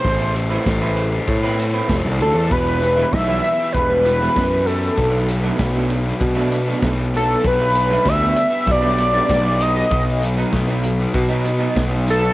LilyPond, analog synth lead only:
\new Staff \with { instrumentName = "Analog synth lead" } { \time 4/4 \key b \phrygian \tempo 4 = 97 c''8 r2. a'8 | b'4 e''4 b'4. a'8~ | a'8 r2. a'8 | b'4 e''4 d''4. dis''8~ |
dis''8 r2. a'8 | }